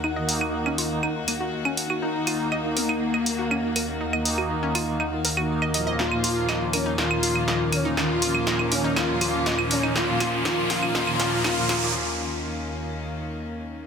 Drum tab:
HH |--o---o---o---o-|--o---o---o---o-|--o---o---o---o-|--o---o---o---o-|
CL |x--x-x--x-x--x-x|--x-x--x-x--x-x-|-x-x--x-x--x-x--|-x--x-x--x-x--x-|
SD |----------------|----------------|----------------|o---o---o---o---|

HH |--o---o---o---o-|--o---o---o---o-|----------------|
CL |x--x-x--x-x--x-x|--x-x--x-x--x-x-|----------------|
SD |o---o---o---o---|o-o-o-o-o-o-o-o-|----------------|